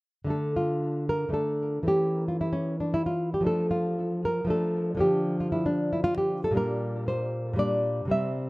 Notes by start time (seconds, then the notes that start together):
0.24 D3 A3 D4
0.30 A4
0.56 F4
1.09 A#4
1.29 D3 A3 D4
1.34 A4
1.83 E3 A3 C#4
1.88 G4
2.28 F4
2.41 E4
2.53 C#4
2.80 D4
2.94 E4
3.06 F4
3.34 G4
3.41 F3 A3 D4
3.47 A4
3.71 F4
4.25 A#4
4.45 F3 A3
4.49 D4 A4
4.95 D3 F3
4.99 D4 G4
5.40 F4
5.52 E4
5.66 D4
5.93 E4
6.04 F4
6.18 G4
6.44 A4
6.51 A#2 G3 D4
6.57 A#4
7.08 C5
7.53 A#2 G3
7.58 D4 D5
8.05 C3 G3
8.10 C4 E5